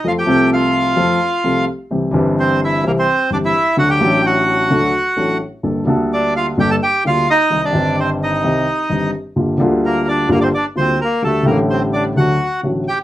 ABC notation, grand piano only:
X:1
M:4/4
L:1/8
Q:1/4=129
K:Gm
V:1 name="Grand piano" clef=bass
[F,,F,A,CA] [C,,C,F,A,CA]3 [F,,F,A,CA] z [C,,C,F,A,CA] z | [C,,C,=E,G,CG] [G,,,G,,E,G,CG]3 [C,,C,E,G,CG] z [G,,,G,,E,G,CG] z | [D,,D,^F,A,DA] [A,,,A,,F,A,DA]3 [D,,D,F,A,DA] z [A,,,A,,F,A,DA] z | [G,,,G,,G,B,DA] [D,,D,G,B,DA]3 [G,,,G,,G,B,DA] z [D,,D,G,B,DA] z |
[C,,C,E,G,CG] [G,,,G,,E,G,CG]3 [C,,C,E,G,CG] z [G,,,G,,E,G,CG] z | [G,,,G,,D,G,B,F] [D,,D,G,B,F]3 [G,,,G,,D,G,B,F] z [D,,D,G,B,F] z | [D,,D,G,A,G] [A,,,A,,D,G,A,G]3 [D,,D,^F,A,^F] z [A,,,A,,D,F,A,F] z |]